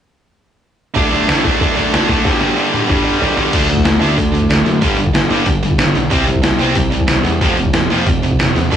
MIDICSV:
0, 0, Header, 1, 5, 480
1, 0, Start_track
1, 0, Tempo, 323102
1, 1414, Time_signature, 4, 2, 24, 8
1, 13023, End_track
2, 0, Start_track
2, 0, Title_t, "Distorted electric guitar"
2, 0, Program_c, 0, 30
2, 12949, Note_on_c, 0, 62, 94
2, 13023, Note_off_c, 0, 62, 0
2, 13023, End_track
3, 0, Start_track
3, 0, Title_t, "Overdriven electric guitar"
3, 0, Program_c, 1, 29
3, 1443, Note_on_c, 1, 50, 86
3, 1451, Note_on_c, 1, 57, 88
3, 1465, Note_on_c, 1, 62, 101
3, 1674, Note_off_c, 1, 57, 0
3, 1680, Note_off_c, 1, 62, 0
3, 1682, Note_off_c, 1, 50, 0
3, 1686, Note_on_c, 1, 62, 86
3, 1691, Note_on_c, 1, 57, 74
3, 1700, Note_on_c, 1, 50, 73
3, 1892, Note_off_c, 1, 50, 0
3, 1907, Note_off_c, 1, 57, 0
3, 1910, Note_on_c, 1, 50, 80
3, 1918, Note_off_c, 1, 62, 0
3, 1924, Note_on_c, 1, 62, 74
3, 1925, Note_on_c, 1, 57, 81
3, 2144, Note_off_c, 1, 57, 0
3, 2145, Note_off_c, 1, 62, 0
3, 2150, Note_off_c, 1, 50, 0
3, 2151, Note_on_c, 1, 62, 85
3, 2161, Note_on_c, 1, 57, 83
3, 2167, Note_on_c, 1, 50, 70
3, 2371, Note_off_c, 1, 50, 0
3, 2380, Note_off_c, 1, 57, 0
3, 2388, Note_on_c, 1, 50, 91
3, 2397, Note_off_c, 1, 62, 0
3, 2398, Note_on_c, 1, 57, 101
3, 2403, Note_on_c, 1, 62, 95
3, 2616, Note_off_c, 1, 57, 0
3, 2624, Note_off_c, 1, 62, 0
3, 2626, Note_off_c, 1, 50, 0
3, 2630, Note_on_c, 1, 62, 86
3, 2634, Note_on_c, 1, 57, 86
3, 2644, Note_on_c, 1, 50, 72
3, 2852, Note_off_c, 1, 50, 0
3, 2859, Note_off_c, 1, 57, 0
3, 2870, Note_on_c, 1, 50, 68
3, 2877, Note_off_c, 1, 62, 0
3, 2877, Note_on_c, 1, 57, 80
3, 2883, Note_on_c, 1, 62, 85
3, 3115, Note_off_c, 1, 57, 0
3, 3115, Note_off_c, 1, 62, 0
3, 3121, Note_off_c, 1, 50, 0
3, 3121, Note_on_c, 1, 62, 88
3, 3133, Note_on_c, 1, 57, 85
3, 3138, Note_on_c, 1, 50, 75
3, 3339, Note_off_c, 1, 57, 0
3, 3342, Note_off_c, 1, 50, 0
3, 3354, Note_on_c, 1, 43, 92
3, 3362, Note_on_c, 1, 50, 97
3, 3370, Note_on_c, 1, 55, 106
3, 3568, Note_off_c, 1, 55, 0
3, 3573, Note_off_c, 1, 50, 0
3, 3577, Note_off_c, 1, 43, 0
3, 3586, Note_on_c, 1, 55, 88
3, 3591, Note_on_c, 1, 50, 75
3, 3595, Note_on_c, 1, 43, 71
3, 3805, Note_off_c, 1, 43, 0
3, 3815, Note_off_c, 1, 50, 0
3, 3823, Note_on_c, 1, 43, 84
3, 3826, Note_off_c, 1, 55, 0
3, 3832, Note_on_c, 1, 50, 75
3, 3844, Note_on_c, 1, 55, 77
3, 4041, Note_off_c, 1, 55, 0
3, 4058, Note_off_c, 1, 50, 0
3, 4059, Note_on_c, 1, 55, 85
3, 4063, Note_off_c, 1, 43, 0
3, 4076, Note_on_c, 1, 50, 79
3, 4081, Note_on_c, 1, 43, 70
3, 4308, Note_off_c, 1, 43, 0
3, 4316, Note_off_c, 1, 50, 0
3, 4321, Note_off_c, 1, 55, 0
3, 4326, Note_on_c, 1, 43, 90
3, 4334, Note_on_c, 1, 50, 97
3, 4336, Note_on_c, 1, 55, 102
3, 4528, Note_off_c, 1, 55, 0
3, 4543, Note_off_c, 1, 50, 0
3, 4545, Note_on_c, 1, 55, 84
3, 4546, Note_off_c, 1, 43, 0
3, 4561, Note_on_c, 1, 50, 80
3, 4564, Note_on_c, 1, 43, 69
3, 4758, Note_off_c, 1, 43, 0
3, 4775, Note_off_c, 1, 50, 0
3, 4776, Note_on_c, 1, 43, 76
3, 4783, Note_off_c, 1, 55, 0
3, 4793, Note_on_c, 1, 50, 78
3, 4801, Note_on_c, 1, 55, 85
3, 5011, Note_off_c, 1, 55, 0
3, 5022, Note_off_c, 1, 50, 0
3, 5029, Note_on_c, 1, 55, 88
3, 5032, Note_off_c, 1, 43, 0
3, 5039, Note_on_c, 1, 50, 82
3, 5050, Note_on_c, 1, 43, 72
3, 5242, Note_off_c, 1, 50, 0
3, 5247, Note_off_c, 1, 55, 0
3, 5258, Note_off_c, 1, 43, 0
3, 5259, Note_on_c, 1, 50, 88
3, 5274, Note_on_c, 1, 57, 81
3, 5279, Note_off_c, 1, 62, 0
3, 5285, Note_on_c, 1, 62, 85
3, 5482, Note_off_c, 1, 50, 0
3, 5490, Note_off_c, 1, 57, 0
3, 5495, Note_off_c, 1, 62, 0
3, 5513, Note_on_c, 1, 50, 63
3, 5525, Note_on_c, 1, 57, 75
3, 5713, Note_off_c, 1, 50, 0
3, 5721, Note_off_c, 1, 57, 0
3, 5731, Note_on_c, 1, 50, 62
3, 5739, Note_on_c, 1, 57, 79
3, 5940, Note_off_c, 1, 50, 0
3, 5953, Note_off_c, 1, 57, 0
3, 5958, Note_on_c, 1, 50, 76
3, 5973, Note_on_c, 1, 57, 89
3, 5976, Note_on_c, 1, 62, 92
3, 6185, Note_off_c, 1, 50, 0
3, 6193, Note_off_c, 1, 57, 0
3, 6201, Note_off_c, 1, 62, 0
3, 6203, Note_on_c, 1, 50, 77
3, 6211, Note_on_c, 1, 57, 77
3, 6424, Note_off_c, 1, 50, 0
3, 6428, Note_off_c, 1, 57, 0
3, 6444, Note_on_c, 1, 50, 60
3, 6454, Note_on_c, 1, 57, 77
3, 6665, Note_off_c, 1, 50, 0
3, 6670, Note_off_c, 1, 57, 0
3, 6693, Note_on_c, 1, 50, 68
3, 6698, Note_on_c, 1, 57, 80
3, 6910, Note_off_c, 1, 50, 0
3, 6912, Note_off_c, 1, 57, 0
3, 6937, Note_on_c, 1, 50, 68
3, 6945, Note_on_c, 1, 57, 76
3, 7152, Note_off_c, 1, 50, 0
3, 7155, Note_off_c, 1, 57, 0
3, 7182, Note_on_c, 1, 43, 79
3, 7196, Note_on_c, 1, 50, 91
3, 7207, Note_on_c, 1, 55, 105
3, 7404, Note_off_c, 1, 43, 0
3, 7411, Note_off_c, 1, 50, 0
3, 7416, Note_off_c, 1, 55, 0
3, 7429, Note_on_c, 1, 43, 60
3, 7430, Note_on_c, 1, 50, 71
3, 7637, Note_off_c, 1, 43, 0
3, 7638, Note_off_c, 1, 50, 0
3, 7663, Note_on_c, 1, 43, 75
3, 7674, Note_on_c, 1, 50, 78
3, 7874, Note_off_c, 1, 43, 0
3, 7880, Note_off_c, 1, 50, 0
3, 7894, Note_on_c, 1, 43, 87
3, 7905, Note_on_c, 1, 50, 89
3, 7916, Note_on_c, 1, 55, 89
3, 8120, Note_off_c, 1, 43, 0
3, 8125, Note_off_c, 1, 50, 0
3, 8131, Note_off_c, 1, 55, 0
3, 8149, Note_on_c, 1, 43, 74
3, 8154, Note_on_c, 1, 50, 89
3, 8357, Note_off_c, 1, 43, 0
3, 8360, Note_off_c, 1, 50, 0
3, 8391, Note_on_c, 1, 43, 70
3, 8395, Note_on_c, 1, 50, 73
3, 8599, Note_off_c, 1, 43, 0
3, 8601, Note_off_c, 1, 50, 0
3, 8617, Note_on_c, 1, 43, 73
3, 8618, Note_on_c, 1, 50, 78
3, 8832, Note_off_c, 1, 43, 0
3, 8832, Note_off_c, 1, 50, 0
3, 8850, Note_on_c, 1, 43, 74
3, 8856, Note_on_c, 1, 50, 75
3, 9068, Note_off_c, 1, 43, 0
3, 9071, Note_off_c, 1, 50, 0
3, 9094, Note_on_c, 1, 48, 89
3, 9100, Note_on_c, 1, 55, 89
3, 9101, Note_on_c, 1, 60, 96
3, 9319, Note_off_c, 1, 48, 0
3, 9323, Note_off_c, 1, 55, 0
3, 9323, Note_off_c, 1, 60, 0
3, 9335, Note_on_c, 1, 48, 69
3, 9338, Note_on_c, 1, 55, 71
3, 9551, Note_off_c, 1, 48, 0
3, 9552, Note_off_c, 1, 55, 0
3, 9578, Note_on_c, 1, 48, 76
3, 9586, Note_on_c, 1, 55, 89
3, 9792, Note_off_c, 1, 48, 0
3, 9796, Note_off_c, 1, 55, 0
3, 9819, Note_on_c, 1, 48, 84
3, 9824, Note_on_c, 1, 55, 94
3, 9837, Note_on_c, 1, 60, 98
3, 10042, Note_off_c, 1, 48, 0
3, 10045, Note_off_c, 1, 55, 0
3, 10051, Note_off_c, 1, 60, 0
3, 10060, Note_on_c, 1, 48, 80
3, 10067, Note_on_c, 1, 55, 85
3, 10273, Note_off_c, 1, 48, 0
3, 10277, Note_off_c, 1, 55, 0
3, 10305, Note_on_c, 1, 48, 64
3, 10311, Note_on_c, 1, 55, 78
3, 10516, Note_off_c, 1, 48, 0
3, 10518, Note_off_c, 1, 55, 0
3, 10535, Note_on_c, 1, 48, 69
3, 10546, Note_on_c, 1, 55, 82
3, 10751, Note_off_c, 1, 48, 0
3, 10756, Note_off_c, 1, 55, 0
3, 10793, Note_on_c, 1, 48, 69
3, 10801, Note_on_c, 1, 55, 82
3, 11000, Note_off_c, 1, 48, 0
3, 11004, Note_off_c, 1, 55, 0
3, 11028, Note_on_c, 1, 41, 83
3, 11032, Note_on_c, 1, 48, 93
3, 11042, Note_on_c, 1, 53, 88
3, 11247, Note_off_c, 1, 41, 0
3, 11249, Note_off_c, 1, 48, 0
3, 11254, Note_off_c, 1, 53, 0
3, 11283, Note_on_c, 1, 48, 72
3, 11284, Note_on_c, 1, 41, 59
3, 11485, Note_off_c, 1, 41, 0
3, 11485, Note_off_c, 1, 48, 0
3, 11522, Note_on_c, 1, 41, 67
3, 11526, Note_on_c, 1, 48, 85
3, 11724, Note_off_c, 1, 41, 0
3, 11727, Note_off_c, 1, 48, 0
3, 11752, Note_on_c, 1, 41, 81
3, 11766, Note_on_c, 1, 48, 86
3, 11768, Note_on_c, 1, 53, 84
3, 11969, Note_off_c, 1, 41, 0
3, 11976, Note_off_c, 1, 48, 0
3, 11977, Note_off_c, 1, 53, 0
3, 12009, Note_on_c, 1, 41, 69
3, 12020, Note_on_c, 1, 48, 80
3, 12208, Note_off_c, 1, 41, 0
3, 12214, Note_off_c, 1, 48, 0
3, 12238, Note_on_c, 1, 41, 69
3, 12242, Note_on_c, 1, 48, 72
3, 12443, Note_off_c, 1, 41, 0
3, 12445, Note_off_c, 1, 48, 0
3, 12478, Note_on_c, 1, 41, 73
3, 12482, Note_on_c, 1, 48, 76
3, 12683, Note_off_c, 1, 41, 0
3, 12685, Note_off_c, 1, 48, 0
3, 12726, Note_on_c, 1, 41, 66
3, 12739, Note_on_c, 1, 48, 80
3, 12927, Note_off_c, 1, 41, 0
3, 12933, Note_off_c, 1, 48, 0
3, 12966, Note_on_c, 1, 50, 83
3, 12971, Note_on_c, 1, 57, 86
3, 13023, Note_off_c, 1, 50, 0
3, 13023, Note_off_c, 1, 57, 0
3, 13023, End_track
4, 0, Start_track
4, 0, Title_t, "Picked electric bass"
4, 0, Program_c, 2, 34
4, 5253, Note_on_c, 2, 38, 80
4, 5465, Note_off_c, 2, 38, 0
4, 5479, Note_on_c, 2, 38, 82
4, 5698, Note_off_c, 2, 38, 0
4, 5718, Note_on_c, 2, 38, 85
4, 5937, Note_off_c, 2, 38, 0
4, 5952, Note_on_c, 2, 38, 78
4, 6174, Note_off_c, 2, 38, 0
4, 6215, Note_on_c, 2, 38, 83
4, 6638, Note_off_c, 2, 38, 0
4, 6681, Note_on_c, 2, 38, 85
4, 6898, Note_off_c, 2, 38, 0
4, 6911, Note_on_c, 2, 42, 85
4, 7133, Note_off_c, 2, 42, 0
4, 7164, Note_on_c, 2, 31, 89
4, 7373, Note_off_c, 2, 31, 0
4, 7382, Note_on_c, 2, 31, 87
4, 7608, Note_off_c, 2, 31, 0
4, 7626, Note_on_c, 2, 31, 91
4, 7850, Note_off_c, 2, 31, 0
4, 7867, Note_on_c, 2, 31, 75
4, 8091, Note_off_c, 2, 31, 0
4, 8114, Note_on_c, 2, 31, 88
4, 8546, Note_off_c, 2, 31, 0
4, 8587, Note_on_c, 2, 31, 85
4, 8811, Note_off_c, 2, 31, 0
4, 8840, Note_on_c, 2, 35, 83
4, 9058, Note_off_c, 2, 35, 0
4, 9081, Note_on_c, 2, 36, 88
4, 9298, Note_off_c, 2, 36, 0
4, 9318, Note_on_c, 2, 36, 91
4, 9537, Note_off_c, 2, 36, 0
4, 9549, Note_on_c, 2, 36, 88
4, 9772, Note_off_c, 2, 36, 0
4, 9809, Note_on_c, 2, 36, 79
4, 10023, Note_off_c, 2, 36, 0
4, 10040, Note_on_c, 2, 36, 91
4, 10470, Note_off_c, 2, 36, 0
4, 10535, Note_on_c, 2, 36, 82
4, 10747, Note_off_c, 2, 36, 0
4, 10760, Note_on_c, 2, 40, 90
4, 10978, Note_off_c, 2, 40, 0
4, 11006, Note_on_c, 2, 29, 87
4, 11221, Note_off_c, 2, 29, 0
4, 11251, Note_on_c, 2, 29, 80
4, 11465, Note_off_c, 2, 29, 0
4, 11490, Note_on_c, 2, 29, 87
4, 11704, Note_off_c, 2, 29, 0
4, 11739, Note_on_c, 2, 29, 81
4, 11949, Note_off_c, 2, 29, 0
4, 11984, Note_on_c, 2, 29, 88
4, 12404, Note_off_c, 2, 29, 0
4, 12471, Note_on_c, 2, 29, 79
4, 12676, Note_off_c, 2, 29, 0
4, 12716, Note_on_c, 2, 40, 81
4, 12919, Note_off_c, 2, 40, 0
4, 12955, Note_on_c, 2, 38, 80
4, 13023, Note_off_c, 2, 38, 0
4, 13023, End_track
5, 0, Start_track
5, 0, Title_t, "Drums"
5, 1425, Note_on_c, 9, 43, 72
5, 1431, Note_on_c, 9, 36, 100
5, 1573, Note_off_c, 9, 43, 0
5, 1579, Note_off_c, 9, 36, 0
5, 1674, Note_on_c, 9, 43, 60
5, 1823, Note_off_c, 9, 43, 0
5, 1911, Note_on_c, 9, 43, 80
5, 1916, Note_on_c, 9, 38, 98
5, 2060, Note_off_c, 9, 43, 0
5, 2064, Note_off_c, 9, 38, 0
5, 2153, Note_on_c, 9, 36, 77
5, 2154, Note_on_c, 9, 43, 65
5, 2302, Note_off_c, 9, 36, 0
5, 2302, Note_off_c, 9, 43, 0
5, 2391, Note_on_c, 9, 36, 106
5, 2396, Note_on_c, 9, 43, 81
5, 2539, Note_off_c, 9, 36, 0
5, 2545, Note_off_c, 9, 43, 0
5, 2630, Note_on_c, 9, 43, 61
5, 2779, Note_off_c, 9, 43, 0
5, 2877, Note_on_c, 9, 43, 75
5, 2881, Note_on_c, 9, 38, 102
5, 3026, Note_off_c, 9, 43, 0
5, 3030, Note_off_c, 9, 38, 0
5, 3102, Note_on_c, 9, 43, 61
5, 3108, Note_on_c, 9, 36, 86
5, 3250, Note_off_c, 9, 43, 0
5, 3256, Note_off_c, 9, 36, 0
5, 3342, Note_on_c, 9, 38, 58
5, 3344, Note_on_c, 9, 36, 107
5, 3491, Note_off_c, 9, 38, 0
5, 3492, Note_off_c, 9, 36, 0
5, 3577, Note_on_c, 9, 38, 49
5, 3726, Note_off_c, 9, 38, 0
5, 4069, Note_on_c, 9, 48, 65
5, 4218, Note_off_c, 9, 48, 0
5, 4302, Note_on_c, 9, 36, 110
5, 4309, Note_on_c, 9, 47, 75
5, 4451, Note_off_c, 9, 36, 0
5, 4457, Note_off_c, 9, 47, 0
5, 4784, Note_on_c, 9, 43, 83
5, 4933, Note_off_c, 9, 43, 0
5, 5014, Note_on_c, 9, 43, 81
5, 5163, Note_off_c, 9, 43, 0
5, 5247, Note_on_c, 9, 46, 67
5, 5247, Note_on_c, 9, 49, 92
5, 5251, Note_on_c, 9, 36, 104
5, 5396, Note_off_c, 9, 46, 0
5, 5396, Note_off_c, 9, 49, 0
5, 5399, Note_off_c, 9, 36, 0
5, 5494, Note_on_c, 9, 46, 51
5, 5605, Note_on_c, 9, 36, 80
5, 5643, Note_off_c, 9, 46, 0
5, 5721, Note_on_c, 9, 46, 72
5, 5725, Note_on_c, 9, 38, 106
5, 5753, Note_off_c, 9, 36, 0
5, 5869, Note_off_c, 9, 46, 0
5, 5874, Note_off_c, 9, 38, 0
5, 5970, Note_on_c, 9, 46, 57
5, 6119, Note_off_c, 9, 46, 0
5, 6210, Note_on_c, 9, 36, 99
5, 6218, Note_on_c, 9, 46, 72
5, 6358, Note_off_c, 9, 36, 0
5, 6366, Note_off_c, 9, 46, 0
5, 6462, Note_on_c, 9, 46, 55
5, 6566, Note_on_c, 9, 36, 79
5, 6610, Note_off_c, 9, 46, 0
5, 6691, Note_on_c, 9, 46, 70
5, 6695, Note_on_c, 9, 38, 98
5, 6715, Note_off_c, 9, 36, 0
5, 6839, Note_off_c, 9, 46, 0
5, 6844, Note_off_c, 9, 38, 0
5, 6928, Note_on_c, 9, 46, 54
5, 7077, Note_off_c, 9, 46, 0
5, 7157, Note_on_c, 9, 46, 72
5, 7163, Note_on_c, 9, 36, 101
5, 7305, Note_off_c, 9, 46, 0
5, 7311, Note_off_c, 9, 36, 0
5, 7411, Note_on_c, 9, 46, 51
5, 7523, Note_on_c, 9, 36, 81
5, 7560, Note_off_c, 9, 46, 0
5, 7646, Note_on_c, 9, 46, 68
5, 7650, Note_on_c, 9, 38, 108
5, 7671, Note_off_c, 9, 36, 0
5, 7794, Note_off_c, 9, 46, 0
5, 7799, Note_off_c, 9, 38, 0
5, 7881, Note_on_c, 9, 46, 52
5, 8030, Note_off_c, 9, 46, 0
5, 8112, Note_on_c, 9, 46, 64
5, 8117, Note_on_c, 9, 36, 101
5, 8261, Note_off_c, 9, 46, 0
5, 8266, Note_off_c, 9, 36, 0
5, 8363, Note_on_c, 9, 46, 51
5, 8481, Note_on_c, 9, 36, 75
5, 8512, Note_off_c, 9, 46, 0
5, 8596, Note_on_c, 9, 46, 64
5, 8600, Note_on_c, 9, 38, 98
5, 8629, Note_off_c, 9, 36, 0
5, 8744, Note_off_c, 9, 46, 0
5, 8749, Note_off_c, 9, 38, 0
5, 8843, Note_on_c, 9, 46, 57
5, 8992, Note_off_c, 9, 46, 0
5, 9079, Note_on_c, 9, 46, 65
5, 9080, Note_on_c, 9, 36, 109
5, 9228, Note_off_c, 9, 46, 0
5, 9229, Note_off_c, 9, 36, 0
5, 9323, Note_on_c, 9, 46, 48
5, 9442, Note_on_c, 9, 36, 74
5, 9472, Note_off_c, 9, 46, 0
5, 9558, Note_on_c, 9, 46, 69
5, 9563, Note_on_c, 9, 38, 107
5, 9590, Note_off_c, 9, 36, 0
5, 9707, Note_off_c, 9, 46, 0
5, 9711, Note_off_c, 9, 38, 0
5, 9795, Note_on_c, 9, 46, 53
5, 9944, Note_off_c, 9, 46, 0
5, 10033, Note_on_c, 9, 46, 76
5, 10039, Note_on_c, 9, 36, 102
5, 10181, Note_off_c, 9, 46, 0
5, 10188, Note_off_c, 9, 36, 0
5, 10281, Note_on_c, 9, 46, 58
5, 10404, Note_on_c, 9, 36, 79
5, 10430, Note_off_c, 9, 46, 0
5, 10513, Note_on_c, 9, 46, 70
5, 10517, Note_on_c, 9, 38, 98
5, 10553, Note_off_c, 9, 36, 0
5, 10661, Note_off_c, 9, 46, 0
5, 10666, Note_off_c, 9, 38, 0
5, 10766, Note_on_c, 9, 46, 59
5, 10915, Note_off_c, 9, 46, 0
5, 11012, Note_on_c, 9, 36, 106
5, 11013, Note_on_c, 9, 46, 70
5, 11160, Note_off_c, 9, 36, 0
5, 11161, Note_off_c, 9, 46, 0
5, 11247, Note_on_c, 9, 46, 52
5, 11373, Note_on_c, 9, 36, 79
5, 11396, Note_off_c, 9, 46, 0
5, 11489, Note_on_c, 9, 46, 71
5, 11494, Note_on_c, 9, 38, 107
5, 11521, Note_off_c, 9, 36, 0
5, 11638, Note_off_c, 9, 46, 0
5, 11642, Note_off_c, 9, 38, 0
5, 11739, Note_on_c, 9, 46, 52
5, 11887, Note_off_c, 9, 46, 0
5, 11980, Note_on_c, 9, 36, 107
5, 11983, Note_on_c, 9, 46, 70
5, 12129, Note_off_c, 9, 36, 0
5, 12131, Note_off_c, 9, 46, 0
5, 12230, Note_on_c, 9, 46, 49
5, 12345, Note_on_c, 9, 36, 80
5, 12379, Note_off_c, 9, 46, 0
5, 12472, Note_on_c, 9, 46, 65
5, 12476, Note_on_c, 9, 38, 92
5, 12493, Note_off_c, 9, 36, 0
5, 12620, Note_off_c, 9, 46, 0
5, 12625, Note_off_c, 9, 38, 0
5, 12720, Note_on_c, 9, 46, 56
5, 12868, Note_off_c, 9, 46, 0
5, 12953, Note_on_c, 9, 36, 108
5, 12961, Note_on_c, 9, 46, 69
5, 13023, Note_off_c, 9, 36, 0
5, 13023, Note_off_c, 9, 46, 0
5, 13023, End_track
0, 0, End_of_file